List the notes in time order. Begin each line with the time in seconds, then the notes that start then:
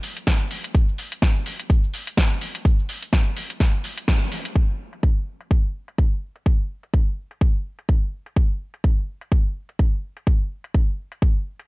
0.03 open hi-hat, shaker
0.17 closed hi-hat, shaker
0.27 kick, snare, closed hi-hat, shaker
0.41 shaker
0.51 open hi-hat, shaker
0.64 closed hi-hat, shaker
0.75 kick, closed hi-hat, shaker
0.88 shaker
0.98 open hi-hat, shaker
1.12 closed hi-hat, shaker
1.22 kick, snare, closed hi-hat, shaker
1.36 shaker
1.46 open hi-hat, shaker
1.60 closed hi-hat, shaker
1.70 kick, closed hi-hat, shaker
1.84 shaker
1.94 open hi-hat, shaker
2.07 closed hi-hat, shaker
2.17 kick, snare, closed hi-hat, shaker
2.31 shaker
2.41 open hi-hat, shaker
2.55 closed hi-hat, shaker
2.65 kick, closed hi-hat, shaker
2.79 shaker
2.89 open hi-hat, shaker
3.02 closed hi-hat, shaker
3.13 kick, snare, closed hi-hat, shaker
3.26 shaker
3.37 open hi-hat, shaker
3.50 closed hi-hat, shaker
3.60 kick, snare, closed hi-hat, shaker
3.74 shaker
3.84 open hi-hat, shaker
3.98 closed hi-hat, shaker
4.08 kick, snare, closed hi-hat, shaker
4.22 shaker
4.32 open hi-hat, shaker
4.45 closed hi-hat, shaker
4.56 kick
4.93 closed hi-hat
5.03 kick, closed hi-hat
5.41 closed hi-hat
5.51 kick
5.88 closed hi-hat
5.98 kick, closed hi-hat
6.36 closed hi-hat
6.46 kick
6.83 closed hi-hat
6.94 kick, closed hi-hat
7.31 closed hi-hat
7.41 kick
7.79 closed hi-hat
7.89 kick
8.26 closed hi-hat
8.36 kick
8.74 closed hi-hat
8.84 kick
9.21 closed hi-hat
9.32 kick
9.69 closed hi-hat
9.79 kick, closed hi-hat
10.17 closed hi-hat
10.27 kick
10.64 closed hi-hat
10.74 kick, closed hi-hat
11.12 closed hi-hat
11.22 kick
11.59 closed hi-hat